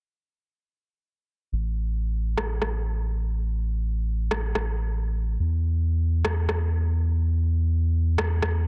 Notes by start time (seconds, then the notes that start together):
1.52 A1
2.38 cross-stick
2.62 cross-stick
4.31 cross-stick
4.55 cross-stick
5.39 E2
6.25 cross-stick
6.49 cross-stick
8.18 cross-stick
8.42 cross-stick